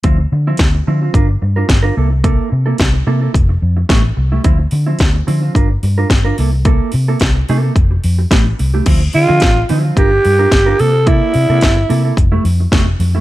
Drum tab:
CC |--------|--------|--------|--------|
HH |x-x-x-x-|x-x-x-x-|xoxoxoxo|xoxoxoxo|
SD |--o---o-|--o---o-|--o---o-|--o---o-|
BD |o-o-o-o-|o-o-o-o-|o-o-o-o-|o-o-o-o-|

CC |x-------|--------|
HH |xoxoxoxo|xoxoxoxo|
SD |--o---o-|--o---o-|
BD |o-o-o-o-|o-o-o-o-|